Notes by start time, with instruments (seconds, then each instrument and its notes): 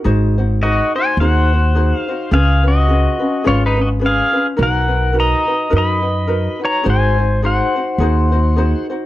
0.04 upright bass G#1, ukulele D#4 F#4 G#4 C5
0.38 ukulele D#4 F#4 C5
0.62 ukulele D#4 F#4 G#4 C5, pedal steel guitar F#4 D#5
0.95 ukulele D#4 F#4 C5, pedal steel guitar C5 G#5
1.17 upright bass D#2, ukulele D#4 G#4, pedal steel guitar C5 F#5
1.21 ukulele F#4 C5
1.53 ukulele D#4 F#4 C5
1.75 ukulele D#4 F#4 G#4 C5
1.97 pedal steel guitar F5
2.08 ukulele D#4 F#4 C5
2.31 upright bass C#2, ukulele C#4 F4 G#4 B4, pedal steel guitar G#4 F5
2.64 ukulele C#4 F4 B4, pedal steel guitar F#4
2.68 pedal steel guitar D#5
2.88 ukulele C#4 F4 G#4 B4
3.19 ukulele C#4 F4 B4
3.44 upright bass G#1, ukulele C#4 F4 G#4 B4, pedal steel guitar C#5
3.49 pedal steel guitar F4
3.66 pedal steel guitar D#4 B4
3.77 ukulele C#4 F4 B4
3.81 pedal steel guitar F#4 D#5
3.99 ukulele C#4 F4 G#4 B4
4.06 pedal steel guitar G#4 F5
4.33 ukulele C#4 F4 B4
4.57 upright bass B1, ukulele D#4 F#4 A#4 B4
4.63 pedal steel guitar A#4 F#5
4.88 ukulele D#4 F#4 B4
5.13 ukulele D#4 F#4 A#4 B4
5.20 pedal steel guitar D#5 A#5
5.47 ukulele D#4 F#4 B4
5.70 upright bass F#2, ukulele D#4 F#4 A#4 B4
5.77 pedal steel guitar D#5 B5
6.02 ukulele D#4 F#4 B4
6.27 ukulele D#4 F#4 A#4 B4
6.59 ukulele D#4 F#4 B4
6.65 pedal steel guitar C#5 A#5
6.84 upright bass G#1, ukulele D#4 F#4 G#4 C5
6.89 pedal steel guitar C5 G#5
7.18 ukulele D#4 F#4 C5
7.43 ukulele D#4 F#4 G#4 C5, pedal steel guitar C5 F#5
7.76 ukulele D#4 F#4 C5
7.98 upright bass D#2, ukulele D#4 F#4 G#4 C5
8.32 ukulele D#4 F#4 C5
8.56 ukulele D#4 F#4 G#4 C5
8.90 ukulele D#4 F#4 C5